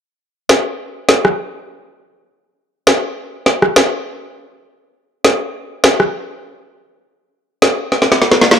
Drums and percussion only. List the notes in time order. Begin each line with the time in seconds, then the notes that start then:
0.49 snare
1.09 snare
1.25 cross-stick
2.87 snare
3.46 snare
3.62 cross-stick
3.76 snare
5.25 snare
5.84 snare
6.00 cross-stick
7.62 snare
7.92 snare
8.02 snare
8.12 snare
8.22 snare
8.31 snare
8.41 snare
8.51 snare